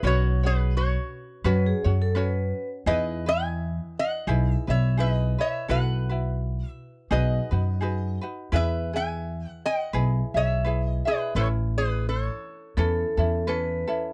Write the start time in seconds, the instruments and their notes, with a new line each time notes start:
0.03 upright bass B1, ukulele C#4 F#4 B4 C#5, resonator guitar played with a steel bar C#5
0.07 resonator guitar played with a steel bar F#4
0.43 ukulele C#4 F#4 C#5, resonator guitar played with a steel bar G#4 B4
0.77 resonator guitar played with a steel bar F#4 C#5
1.44 upright bass F#2, ukulele C#4 F#4 B4 C#5, vibraphone B4
1.66 vibraphone G#4
1.84 upright bass F#2, ukulele C#4 F#4 C#5
2.02 vibraphone A4
2.15 ukulele C#4 F#4 B4 C#5, vibraphone B4
2.86 upright bass E2, ukulele D#4 E4 G#4 B4, resonator guitar played with a steel bar B4 D#5
3.26 ukulele E4 B4, resonator guitar played with a steel bar E5 G#5
3.99 resonator guitar played with a steel bar D#5 F#5
4.27 upright bass B1, ukulele D#4 E4 G#4 B4
4.53 resonator guitar played with a steel bar E5
4.67 upright bass B1, ukulele E4 B4, resonator guitar played with a steel bar C#5 E5
4.97 ukulele D#4 E4 G#4 B4, resonator guitar played with a steel bar B4 D#5
5.38 ukulele E4 B4, resonator guitar played with a steel bar C#5 E5
5.68 upright bass B1, ukulele E4 F#4 A4 B4, resonator guitar played with a steel bar B4 F#5
6.09 ukulele E4 F#4 B4
6.69 resonator guitar played with a steel bar E5
7.11 upright bass B1, ukulele D#4 F#4 G#4 B4, resonator guitar played with a steel bar B4 D#5
7.51 upright bass F#2, ukulele D#4 F#4 B4
7.81 ukulele D#4 F#4 G#4 B4
8.21 ukulele D#4 F#4 B4
8.52 upright bass E2, ukulele E4 G#4 B4 E5, resonator guitar played with a steel bar B4 E5
8.93 ukulele E4 G#4, resonator guitar played with a steel bar E5 G#5
9.49 resonator guitar played with a steel bar F#5
9.66 resonator guitar played with a steel bar D#5 F#5
9.93 upright bass B1, ukulele E4 G#4 B4
10.34 upright bass B1, ukulele E4 G#4 E5, resonator guitar played with a steel bar C#5 E5
10.65 ukulele E4 G#4 B4 E5
10.87 resonator guitar played with a steel bar D#5
11.05 ukulele E4 G#4 E5, resonator guitar played with a steel bar G#4 B4
11.35 upright bass A1, ukulele C#4 E4 B4, resonator guitar played with a steel bar A4 C#5
11.78 resonator guitar played with a steel bar G#4 B4
12.09 resonator guitar played with a steel bar A4 C#5
12.77 upright bass E2, ukulele C#4 E4 A4 B4, vibraphone A4
13.17 upright bass E2, ukulele C#4 E4 A4
13.47 ukulele C#4 E4 A4 B4, vibraphone B4
13.88 ukulele C#4 E4 A4